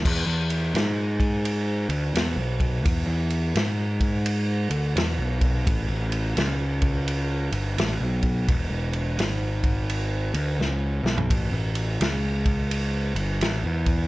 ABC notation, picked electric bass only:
X:1
M:4/4
L:1/16
Q:"Swing" 1/4=85
K:Emix
V:1 name="Picked electric bass" clef=bass
E,, E,,3 G,,6 D,,2 E,, B,,,3 | E,, E,,3 G,,6 D,,2 E,, B,,,3 | A,,, A,,,3 C,,6 =G,,,2 A,,, B,,,3 | E,,, E,,,3 G,,,6 D,,2 C,,2 B,,,2 |
A,,, A,,,3 C,,6 =G,,,2 A,,, E,,3 |]